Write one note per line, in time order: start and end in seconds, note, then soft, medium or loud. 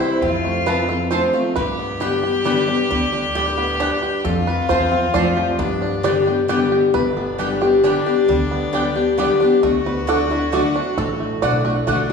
0.00 0.20 E3 medium
0.00 0.20 G3 medium
0.00 0.20 C4 loud
0.00 0.21 E4 loud
0.00 0.23 E4 loud
0.00 0.18 G4 medium
0.00 0.63 C5 loud
0.21 1.19 F2 medium
0.21 1.07 F2 medium
0.21 0.85 C4 medium
0.21 1.34 F4 loud
0.45 1.07 A3 medium
0.66 0.88 F3 loud
0.66 0.89 A3 medium
0.66 0.76 C4 loud
0.66 0.89 C4 loud
0.66 0.76 F4 medium
0.66 0.87 F4 loud
0.66 0.88 B4 loud
0.66 0.76 C5 loud
0.66 0.76 A5 loud
0.89 1.11 C4 soft
0.89 1.10 F4 medium
0.89 1.10 A4 medium
1.11 1.33 F3 medium
1.11 1.33 A3 medium
1.11 1.20 C4 loud
1.11 1.33 C4 loud
1.11 1.21 F4 medium
1.11 1.32 F4 loud
1.11 1.55 C5 medium
1.11 1.21 C5 loud
1.11 1.21 A5 loud
1.33 1.56 A3 medium
1.33 1.56 C4 medium
1.33 1.55 F4 medium
1.56 2.54 G2 medium
1.56 2.41 G2 medium
1.56 4.26 G4 loud
1.56 2.02 B4 loud
1.79 2.42 B3 medium
2.00 2.22 D3 medium
2.00 2.23 G3 medium
2.00 2.10 B3 medium
2.00 2.23 B3 loud
2.00 2.22 G4 medium
2.00 2.10 G4 medium
2.00 2.21 G4 loud
2.00 2.11 D5 medium
2.00 2.11 G5 medium
2.23 2.45 B3 medium
2.23 2.44 G4 medium
2.23 2.86 G4 medium
2.44 2.67 D3 medium
2.44 2.67 G3 medium
2.44 2.89 G3 medium
2.44 2.55 B3 medium
2.44 2.67 B3 loud
2.44 2.55 G4 loud
2.44 2.66 G4 loud
2.44 2.55 D5 medium
2.44 2.55 G5 loud
2.67 2.90 B3 medium
2.67 3.12 D4 medium
2.67 2.89 G4 medium
2.90 3.88 D2 medium
2.90 3.76 D3 medium
2.90 3.53 G3 medium
3.13 3.76 D4 medium
3.35 3.78 A2 loud
3.35 3.44 B3 medium
3.35 3.98 G4 medium
3.35 3.45 G4 medium
3.35 3.45 D5 loud
3.35 3.45 G5 medium
3.58 4.20 B3 medium
3.80 4.23 G2 loud
3.80 3.89 B3 loud
3.80 4.24 D4 medium
3.80 3.89 G4 loud
3.80 3.90 D5 medium
3.80 3.90 G5 loud
4.02 4.25 G4 medium
4.24 4.57 F2 loud
4.24 5.10 F2 loud
4.24 5.61 F4 loud
4.24 4.47 A4 medium
4.47 4.69 B4 medium
4.69 5.08 E2 medium
4.69 4.91 F3 medium
4.69 4.91 A3 medium
4.69 4.79 C4 medium
4.69 4.92 C4 medium
4.69 4.79 F4 loud
4.69 4.90 F4 loud
4.69 5.14 C5 loud
4.69 4.79 C5 loud
4.69 4.79 A5 loud
4.92 5.55 C4 medium
4.92 5.14 C4 soft
4.92 5.13 F4 medium
5.14 5.52 F2 medium
5.14 5.57 F3 medium
5.14 5.57 A3 loud
5.14 5.23 C4 medium
5.14 5.57 C4 medium
5.14 5.24 F4 loud
5.14 5.58 F4 loud
5.14 5.24 C5 loud
5.14 5.56 D5 loud
5.14 5.24 A5 loud
5.37 5.59 G4 medium
5.59 6.44 G2 loud
5.59 6.57 G2 loud
5.59 6.22 B3 medium
5.59 6.71 D4 loud
5.82 6.04 D4 medium
6.03 6.25 D3 loud
6.03 6.26 G3 loud
6.03 6.13 B3 loud
6.03 6.26 B3 medium
6.03 6.13 G4 loud
6.03 6.25 G4 loud
6.03 6.46 D5 loud
6.03 6.14 D5 medium
6.03 6.14 G5 medium
6.26 6.49 B3 soft
6.26 6.48 G4 medium
6.48 6.91 D3 loud
6.48 6.92 G3 loud
6.48 6.58 B3 medium
6.48 6.92 B3 loud
6.48 6.70 G4 medium
6.48 6.58 G4 loud
6.48 6.92 G4 loud
6.48 6.59 D5 loud
6.48 6.59 G5 loud
6.72 6.94 G4 medium
6.94 7.92 G1 medium
6.94 7.79 G2 medium
6.94 9.59 D4 loud
6.94 7.57 B4 loud
7.17 7.79 B3 medium
7.38 7.60 D3 medium
7.38 7.61 G3 medium
7.38 7.48 B3 medium
7.38 7.61 B3 medium
7.38 7.60 G4 medium
7.38 7.48 G4 loud
7.38 7.60 G4 loud
7.38 7.48 D5 loud
7.38 7.48 G5 loud
7.61 7.84 B3 soft
7.61 7.83 G4 medium
7.61 8.05 G4 medium
7.83 8.05 D3 loud
7.83 8.06 G3 medium
7.83 7.93 B3 medium
7.83 8.06 B3 medium
7.83 8.73 D4 medium
7.83 7.93 G4 loud
7.83 8.05 G4 medium
7.83 7.93 D5 loud
7.83 7.93 G5 loud
8.06 8.29 B3 medium
8.06 8.28 G4 medium
8.06 8.69 G4 medium
8.28 9.26 D2 medium
8.28 8.71 D3 medium
8.28 8.92 G3 medium
8.51 9.14 B3 medium
8.73 8.95 D3 loud
8.73 8.95 G3 medium
8.73 8.82 B3 medium
8.73 8.95 B3 loud
8.73 9.40 D4 medium
8.73 8.83 G4 medium
8.73 8.94 G4 loud
8.73 8.83 D5 medium
8.73 8.83 G5 loud
8.95 9.18 B3 medium
8.95 9.17 G4 medium
8.95 9.59 G4 medium
9.18 9.40 D3 medium
9.18 9.40 G3 loud
9.18 9.27 B3 medium
9.18 9.63 B3 medium
9.18 9.40 B3 medium
9.18 9.27 G4 loud
9.18 9.39 G4 loud
9.18 9.28 D5 loud
9.18 9.28 G5 loud
9.40 9.63 B3 medium
9.40 10.34 D4 medium
9.40 9.62 G4 medium
9.62 10.61 D2 medium
9.62 10.06 D3 loud
9.62 11.03 A3 medium
9.62 12.05 F#4 loud
9.86 10.07 B4 medium
10.07 10.29 D3 loud
10.07 10.17 A3 loud
10.07 10.29 A3 medium
10.07 10.30 D4 medium
10.07 10.17 F#4 medium
10.07 10.29 F#4 loud
10.07 10.29 A4 loud
10.07 10.17 D5 loud
10.07 10.17 F#5 medium
10.30 10.52 D4 medium
10.30 10.53 E4 medium
10.30 10.52 F#4 medium
10.52 10.74 D3 medium
10.52 10.61 A3 medium
10.52 10.74 A3 medium
10.52 10.75 D4 loud
10.52 10.62 F#4 loud
10.52 10.95 F#4 loud
10.52 10.73 F#4 loud
10.52 10.62 D5 medium
10.52 10.62 F#5 loud
10.75 11.42 D4 medium
10.75 10.97 D4 medium
10.75 10.96 F#4 medium
10.97 11.30 A1 medium
10.97 11.83 A2 medium
10.97 11.44 A4 loud
11.20 11.63 A3 medium
11.42 11.80 B1 medium
11.42 11.64 D3 loud
11.42 11.51 A3 medium
11.42 11.64 A3 medium
11.42 11.65 D4 loud
11.42 11.51 F#4 loud
11.42 11.64 F#4 medium
11.42 12.05 D5 loud
11.42 11.52 D5 medium
11.42 11.52 F#5 loud
11.65 12.13 A3 medium
11.65 11.87 D4 soft
11.65 11.86 F#4 medium
11.87 12.13 A1 medium
11.87 12.09 D3 medium
11.87 11.96 A3 loud
11.87 12.09 A3 loud
11.87 12.10 D4 medium
11.87 12.09 D4 medium
11.87 11.96 F#4 loud
11.87 12.09 F#4 loud
11.87 11.97 D5 loud
11.87 11.97 F#5 loud
12.10 12.13 D4 medium
12.10 12.13 F#4 medium